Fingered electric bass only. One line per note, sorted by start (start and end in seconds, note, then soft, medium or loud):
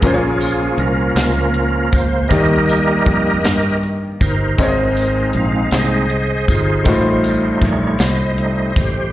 0.03 0.75 A#1 loud
0.78 1.13 C2 medium
1.16 1.88 C#2 loud
1.93 2.28 C#2 medium
2.31 3.02 D#2 loud
3.06 3.41 F2 medium
3.44 4.16 G2 medium
4.21 4.55 G1 medium
4.58 5.30 G#1 loud
5.34 5.69 A#1 medium
5.72 6.44 C2 medium
6.48 6.83 G1 medium
6.86 7.58 A1 medium
7.62 7.97 A#1 medium
8.00 8.72 C2 medium
8.77 9.11 A1 medium